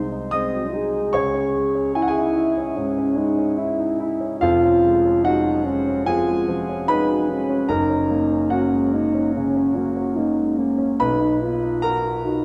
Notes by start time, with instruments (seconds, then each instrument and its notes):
Already playing: grand piano C2 G#3 D#4 C5 C6
0.12 grand piano D#4
0.31 grand piano G#3 D#5 D#6, french horn C4
0.53 grand piano F#3
0.74 grand piano D#4, french horn G#4
0.94 grand piano G#3
1.13 grand piano C#2 C#5 C#6
1.34 grand piano C#4
1.55 grand piano G#3
1.75 grand piano C#4
1.95 french horn E4, grand piano E4 G#5
2.02 grand piano F#5
2.08 grand piano G#4 G#5
2.17 grand piano D#4
2.36 grand piano E4
2.57 grand piano C#4
2.76 grand piano G#2, french horn C#4
2.98 grand piano C#4
3.16 grand piano G#3, french horn D#4
3.38 grand piano C#4
3.58 french horn E4, grand piano E4
3.79 grand piano D#4
4.00 grand piano E4
4.21 grand piano C#4
4.40 grand piano F1 F2 F4 F5, french horn F4
4.63 grand piano C#4
4.83 grand piano G#3
5.05 grand piano C#4
5.23 grand piano G#3 F#4 F#5, french horn D#4
5.48 grand piano F#3
5.66 grand piano G#3, french horn C#4
5.88 grand piano C#4
6.06 grand piano F2 G#4 G#5, french horn F4
6.28 grand piano G#3
6.48 grand piano F3
6.69 grand piano C#4
6.88 grand piano G#3 B4 B5, french horn D#4
7.09 grand piano F#3
7.30 grand piano G#3, french horn C#4
7.50 grand piano C#4
7.69 grand piano F#1 F#2 A#4 A#5, french horn D#4
7.90 grand piano C#4
8.11 grand piano A#3
8.32 grand piano C#4
8.50 grand piano A#3 F#4 F#5, french horn C#4
8.73 grand piano G#3
8.93 grand piano A#3, french horn D#4
9.15 grand piano C#4
9.34 grand piano C#3, french horn C#4
9.57 grand piano C#4
9.76 grand piano A#3, french horn F#4
9.97 grand piano C#4
10.17 grand piano A#3, french horn D#4
10.38 grand piano G#3
10.58 grand piano A#3, french horn C#4
10.78 grand piano C#4
11.00 grand piano B1 B4 B5, french horn D#4
11.21 grand piano D#4
11.41 grand piano B3, french horn F4
11.63 grand piano D#4
11.82 grand piano F#4 A#4 A#5, french horn F#4
12.05 grand piano F4
12.25 french horn D#4, grand piano F#4